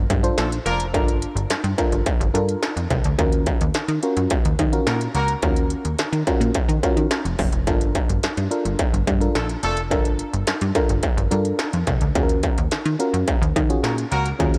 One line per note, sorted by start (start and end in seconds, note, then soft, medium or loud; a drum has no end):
0.10 0.31 G2 loud
0.10 kick loud
0.10 closed hi-hat medium
0.23 0.59 D4 medium
0.23 0.59 F4 medium
0.23 0.59 A4 medium
0.23 0.59 C5 loud
0.23 closed hi-hat medium
0.38 0.59 A#1 loud
0.38 0.50 A3 medium
0.38 0.50 D4 medium
0.38 0.50 F4 medium
0.38 0.50 A4 medium
0.38 snare loud
0.38 closed hi-hat loud
0.52 closed hi-hat medium
0.66 0.96 F1 medium
0.66 0.84 A#3 loud
0.66 0.84 D4 loud
0.66 0.84 F4 loud
0.66 0.84 A#4 loud
0.66 closed hi-hat medium
0.80 closed hi-hat medium
0.93 1.26 G1 loud
0.93 1.36 D4 medium
0.93 1.36 F4 medium
0.93 1.36 A4 medium
0.93 1.36 A#4 medium
0.93 kick loud
0.93 closed hi-hat medium
1.08 closed hi-hat medium
1.22 closed hi-hat medium
1.35 1.46 G1 medium
1.35 closed hi-hat medium
1.50 1.56 G2 soft
1.50 snare loud
1.50 closed hi-hat medium
1.64 1.75 G2 loud
1.64 closed hi-hat medium
1.78 2.06 D4 medium
1.78 2.06 F4 medium
1.78 2.06 A4 medium
1.78 2.06 A#4 loud
1.78 kick medium
1.78 closed hi-hat medium
1.92 2.03 G1 medium
1.92 closed hi-hat soft
2.06 kick loud
2.06 closed hi-hat medium
2.20 2.31 G1 loud
2.20 closed hi-hat medium
2.34 2.56 G2 medium
2.34 2.76 D4 medium
2.34 2.76 F4 medium
2.34 2.76 A4 medium
2.34 2.76 A#4 loud
2.34 closed hi-hat medium
2.49 closed hi-hat soft
2.63 snare loud
2.63 closed hi-hat medium
2.77 2.87 F2 medium
2.77 closed hi-hat medium
2.90 3.01 C2 loud
2.90 kick medium
2.90 closed hi-hat medium
3.04 3.15 D2 loud
3.04 closed hi-hat medium
3.18 3.50 D#2 loud
3.18 3.60 C#4 medium
3.18 3.60 F4 medium
3.18 3.61 F#4 medium
3.18 3.61 A#4 loud
3.18 kick loud
3.18 closed hi-hat medium
3.32 closed hi-hat medium
3.46 kick loud
3.46 closed hi-hat medium
3.61 3.72 D#2 medium
3.61 closed hi-hat medium
3.74 3.81 D#3 medium
3.74 snare loud
3.74 closed hi-hat medium
3.88 3.99 D#3 medium
3.88 closed hi-hat soft
4.03 4.38 C#4 medium
4.03 4.38 F4 medium
4.03 4.38 F#4 medium
4.03 4.38 A#4 medium
4.03 closed hi-hat medium
4.17 4.27 F#2 medium
4.17 closed hi-hat medium
4.30 kick loud
4.30 closed hi-hat loud
4.45 4.56 D#2 medium
4.45 closed hi-hat medium
4.59 4.80 D#3 medium
4.59 kick medium
4.59 closed hi-hat medium
4.72 5.08 C#4 medium
4.72 5.08 F4 medium
4.72 5.08 F#4 medium
4.72 5.08 A#4 loud
4.72 closed hi-hat medium
4.87 5.08 A#2 loud
4.87 4.99 A#3 medium
4.87 4.99 F#4 medium
4.87 4.99 A#4 medium
4.87 snare loud
4.87 closed hi-hat loud
5.01 closed hi-hat medium
5.15 5.36 C#2 medium
5.15 5.33 A#3 medium
5.15 5.33 F#4 medium
5.15 5.33 A#4 loud
5.15 closed hi-hat medium
5.28 closed hi-hat medium
5.42 5.75 D#2 loud
5.42 5.85 C#4 medium
5.42 5.85 F4 medium
5.42 5.85 F#4 medium
5.42 5.85 A#4 medium
5.42 kick loud
5.42 closed hi-hat medium
5.56 closed hi-hat medium
5.70 closed hi-hat medium
5.85 5.95 D#2 medium
5.85 closed hi-hat medium
5.99 6.05 D#3 medium
5.99 snare loud
5.99 closed hi-hat medium
6.13 6.23 D#3 loud
6.13 closed hi-hat medium
6.27 6.55 C#4 medium
6.27 6.55 F4 medium
6.27 6.55 F#4 medium
6.27 6.55 A#4 loud
6.27 kick medium
6.27 closed hi-hat medium
6.41 6.51 A#2 loud
6.41 closed hi-hat medium
6.54 kick loud
6.54 closed hi-hat loud
6.69 6.79 D#3 loud
6.69 closed hi-hat medium
6.83 7.25 C#4 medium
6.83 7.25 F4 medium
6.83 7.25 F#4 medium
6.83 7.25 A#4 loud
6.83 kick loud
6.83 closed hi-hat medium
6.97 7.07 D#3 medium
6.97 closed hi-hat medium
7.11 snare loud
7.11 closed hi-hat loud
7.25 7.36 F1 medium
7.25 closed hi-hat medium
7.39 7.50 F#1 loud
7.39 kick loud
7.39 open hi-hat medium
7.52 7.69 F1 medium
7.52 closed hi-hat medium
7.67 7.99 G1 loud
7.67 8.09 D4 medium
7.67 8.09 F4 medium
7.67 8.09 A4 medium
7.67 8.10 A#4 medium
7.67 kick loud
7.67 closed hi-hat medium
7.81 closed hi-hat medium
7.95 kick medium
7.95 closed hi-hat medium
8.09 8.20 G1 medium
8.09 closed hi-hat medium
8.23 8.29 G2 soft
8.23 snare loud
8.23 closed hi-hat medium
8.37 8.48 G2 loud
8.37 closed hi-hat medium
8.51 8.86 D4 medium
8.51 8.86 F4 medium
8.51 8.86 A4 medium
8.51 8.86 A#4 loud
8.51 closed hi-hat medium
8.65 8.76 G1 medium
8.65 closed hi-hat medium
8.79 kick loud
8.79 closed hi-hat loud
8.93 9.04 G1 medium
8.93 closed hi-hat medium
9.07 9.29 G2 loud
9.07 kick loud
9.07 closed hi-hat medium
9.21 9.56 D4 medium
9.21 9.56 F4 medium
9.21 9.56 A4 medium
9.21 9.56 A#4 medium
9.21 closed hi-hat medium
9.35 9.56 A#1 loud
9.35 9.47 A3 medium
9.35 9.47 D4 medium
9.35 9.47 F4 medium
9.35 9.47 A4 loud
9.35 snare loud
9.35 closed hi-hat loud
9.49 closed hi-hat medium
9.63 9.93 F1 loud
9.63 9.81 A3 loud
9.63 9.81 D4 loud
9.63 9.81 F4 medium
9.63 9.81 A4 loud
9.63 closed hi-hat medium
9.77 closed hi-hat medium
9.91 10.23 G1 loud
9.91 10.33 D4 medium
9.91 10.33 F4 medium
9.91 10.33 A4 medium
9.91 10.34 A#4 loud
9.91 kick loud
9.91 closed hi-hat medium
10.05 closed hi-hat medium
10.19 closed hi-hat medium
10.33 10.44 G1 medium
10.33 closed hi-hat medium
10.47 10.53 G2 soft
10.47 snare loud
10.47 closed hi-hat medium
10.61 10.72 G2 loud
10.61 closed hi-hat medium
10.75 11.03 D4 medium
10.75 11.03 F4 medium
10.75 11.03 A4 medium
10.75 11.04 A#4 loud
10.75 kick medium
10.75 closed hi-hat medium
10.89 11.00 G1 medium
10.89 closed hi-hat medium
11.03 kick loud
11.03 closed hi-hat loud
11.17 11.28 G1 loud
11.17 closed hi-hat medium
11.31 11.53 G2 medium
11.31 11.73 D4 medium
11.31 11.73 F4 medium
11.31 11.73 A4 medium
11.31 11.74 A#4 loud
11.31 closed hi-hat medium
11.45 closed hi-hat medium
11.59 snare loud
11.59 closed hi-hat loud
11.73 11.84 F2 medium
11.73 closed hi-hat medium
11.87 11.98 C2 loud
11.87 kick loud
11.87 closed hi-hat medium
12.01 12.12 D2 medium
12.01 closed hi-hat medium
12.15 12.47 D#2 medium
12.15 12.58 C#4 medium
12.15 12.58 F4 medium
12.15 12.58 F#4 medium
12.15 12.23 G#4 medium
12.15 kick loud
12.15 closed hi-hat medium
12.23 12.61 A#4 medium
12.29 closed hi-hat medium
12.43 kick medium
12.43 closed hi-hat medium
12.58 12.69 D#2 medium
12.58 closed hi-hat medium
12.71 12.77 D#3 medium
12.71 snare loud
12.71 closed hi-hat medium
12.86 12.96 D#3 loud
12.86 closed hi-hat medium
12.99 13.35 C#4 medium
12.99 13.35 F4 medium
12.99 13.35 F#4 medium
12.99 13.35 A#4 loud
12.99 closed hi-hat medium
13.14 13.24 F#2 loud
13.14 closed hi-hat medium
13.28 kick loud
13.28 closed hi-hat medium
13.42 13.52 D#2 loud
13.42 closed hi-hat medium
13.56 13.77 D#3 loud
13.56 kick loud
13.56 closed hi-hat medium
13.70 14.05 C#4 medium
13.70 14.05 F4 medium
13.70 14.05 F#4 medium
13.70 14.05 G#4 medium
13.70 closed hi-hat soft
13.83 14.05 A#2 medium
13.83 13.96 A#3 medium
13.83 13.96 F#4 medium
13.83 13.96 A#4 medium
13.83 snare loud
13.83 closed hi-hat loud
13.98 closed hi-hat medium
14.11 14.33 C#2 loud
14.11 14.29 A#3 loud
14.11 14.29 F#4 loud
14.11 14.29 A#4 loud
14.11 closed hi-hat medium
14.26 closed hi-hat medium
14.39 14.58 D#2 loud
14.39 14.58 C#4 medium
14.39 14.58 F4 medium
14.39 14.58 F#4 medium
14.39 14.58 G#4 medium
14.39 kick loud
14.39 closed hi-hat medium
14.54 closed hi-hat medium